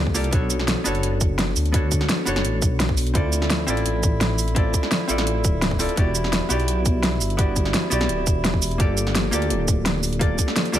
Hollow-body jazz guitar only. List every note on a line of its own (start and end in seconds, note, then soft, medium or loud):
0.00 0.13 A#3 loud
0.00 0.13 F4 medium
0.00 0.13 G4 medium
0.00 0.14 A4 medium
0.00 0.14 D5 loud
0.14 0.30 A#3 loud
0.14 0.31 F4 medium
0.14 0.31 G4 medium
0.14 0.31 A4 medium
0.14 0.31 D5 loud
0.31 0.83 B3 medium
0.31 0.83 D4 medium
0.31 0.84 F#4 medium
0.31 0.84 A4 medium
0.31 0.85 C#5 medium
0.84 1.71 B3 loud
0.84 1.72 D4 medium
0.84 1.72 F#4 medium
0.84 1.72 A4 medium
0.84 1.73 C#5 loud
1.72 2.24 B3 medium
1.72 2.25 D4 medium
1.72 2.25 F#4 medium
1.72 2.25 A4 medium
1.72 2.26 C#5 medium
2.25 3.12 B3 medium
2.25 3.13 D4 medium
2.25 3.13 F#4 medium
2.25 3.14 A4 medium
2.25 3.14 C#5 loud
3.14 3.65 C4 medium
3.14 3.66 E4 medium
3.14 3.66 F4 medium
3.14 3.67 A4 medium
3.14 3.67 D5 medium
3.67 4.54 C4 loud
3.67 4.54 E4 medium
3.67 4.54 F4 medium
3.67 4.55 A4 medium
3.67 4.55 D5 loud
4.55 5.06 C4 medium
4.55 5.07 E4 medium
4.55 5.07 F4 medium
4.55 5.08 A4 medium
4.55 5.08 D5 medium
5.08 5.77 C4 medium
5.08 5.78 E4 medium
5.08 5.78 F4 medium
5.08 5.79 A4 medium
5.08 5.79 D5 loud
5.79 5.95 C4 medium
5.79 5.95 E4 medium
5.79 5.96 F4 medium
5.79 5.96 A4 medium
5.79 5.96 D5 medium
5.96 6.48 B3 medium
5.96 6.48 E4 medium
5.96 6.48 F#4 medium
5.96 6.49 G4 medium
5.96 6.49 D5 medium
6.49 7.36 B3 loud
6.49 7.36 E4 medium
6.49 7.37 F#4 medium
6.49 7.37 G4 medium
6.49 7.37 D5 loud
7.37 7.89 B3 medium
7.37 7.89 E4 medium
7.37 7.90 F#4 medium
7.37 7.90 G4 medium
7.37 7.90 D5 medium
7.90 8.77 B3 loud
7.90 8.78 E4 medium
7.90 8.78 F#4 medium
7.90 8.78 G4 medium
7.90 8.79 D5 loud
8.78 9.30 A#3 medium
8.78 9.30 F4 medium
8.78 9.31 G4 medium
8.78 9.31 A4 medium
8.78 9.32 D5 medium
9.31 10.18 A#3 loud
9.31 10.19 F4 medium
9.31 10.19 G4 medium
9.31 10.19 A4 medium
9.31 10.20 D5 loud
10.19 10.71 A#3 medium
10.19 10.72 F4 medium
10.19 10.72 G4 medium
10.19 10.72 A4 medium
10.19 10.73 D5 medium
10.72 10.79 A#3 loud
10.72 10.79 F4 medium
10.72 10.79 G4 medium
10.72 10.79 A4 medium
10.72 10.79 D5 loud